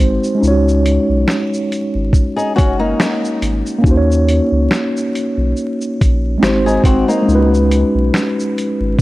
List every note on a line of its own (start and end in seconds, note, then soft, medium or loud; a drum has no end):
0.00 0.19 G#1 medium
0.00 0.34 G#3 medium
0.00 0.42 C4 medium
0.00 0.40 D#4 medium
0.00 0.43 F#4 medium
0.00 0.44 C5 medium
0.00 closed hi-hat medium
0.00 shaker soft
0.23 shaker medium
0.35 3.77 G#3 medium
0.35 3.79 C#4 medium
0.41 0.98 C#2 loud
0.41 3.80 D#4 medium
0.41 0.50 F4 medium
0.41 shaker medium
0.48 3.85 F#4 medium
0.48 3.84 C#5 medium
0.68 shaker soft
0.86 closed hi-hat medium
0.86 shaker soft
1.09 1.25 B1 medium
1.28 finger snap medium
1.28 snare medium
1.28 shaker soft
1.54 shaker soft
1.72 closed hi-hat medium
1.72 shaker soft
1.95 2.11 G#1 medium
2.13 kick medium
2.13 shaker medium
2.36 2.55 D#4 medium
2.36 2.55 G#4 medium
2.36 shaker soft
2.56 2.93 F#1 medium
2.56 2.79 C#4 medium
2.56 2.78 F#4 medium
2.56 kick medium
2.56 closed hi-hat medium
2.56 shaker soft
2.79 3.81 A#3 medium
2.79 3.80 D#4 medium
3.00 finger snap medium
3.00 snare medium
3.00 shaker medium
3.25 shaker soft
3.42 3.62 G#1 medium
3.42 closed hi-hat medium
3.42 shaker soft
3.66 shaker medium
3.79 6.35 A#3 medium
3.79 6.36 C#4 medium
3.84 4.40 D#2 medium
3.84 6.38 D#4 medium
3.84 kick loud
3.84 shaker medium
3.88 6.39 F#4 medium
3.88 3.95 C5 medium
3.97 6.44 C#5 medium
4.11 shaker soft
4.28 closed hi-hat medium
4.28 shaker soft
4.52 4.68 C#2 medium
4.71 finger snap medium
4.71 snare medium
4.71 shaker soft
4.97 shaker soft
5.15 closed hi-hat soft
5.15 shaker soft
5.38 5.53 B1 medium
5.57 shaker soft
5.81 shaker soft
6.01 6.36 A#1 medium
6.01 kick medium
6.01 closed hi-hat medium
6.01 shaker soft
6.38 7.21 G#3 medium
6.38 7.26 C4 medium
6.38 7.27 D#4 medium
6.43 6.78 G#1 loud
6.43 7.28 F#4 medium
6.43 7.29 C5 medium
6.43 finger snap medium
6.43 snare loud
6.43 shaker medium
6.66 6.84 D#4 medium
6.66 6.84 G#4 medium
6.66 shaker soft
6.84 7.04 G#1 medium
6.84 7.07 C4 medium
6.84 7.07 F#4 medium
6.84 kick medium
6.84 closed hi-hat medium
6.84 shaker soft
7.08 7.49 A#3 medium
7.08 7.49 D#4 medium
7.08 shaker medium
7.23 9.02 G#3 medium
7.23 9.02 C#4 medium
7.28 7.83 C#2 loud
7.28 9.02 D#4 medium
7.28 7.37 F4 medium
7.28 shaker medium
7.35 9.02 F#4 medium
7.35 9.02 B4 medium
7.54 shaker soft
7.71 closed hi-hat medium
7.71 shaker soft
7.95 8.10 B1 medium
8.14 finger snap medium
8.14 snare loud
8.14 shaker medium
8.40 shaker soft
8.58 closed hi-hat medium
8.58 shaker soft
8.81 8.96 G#1 medium
8.99 kick medium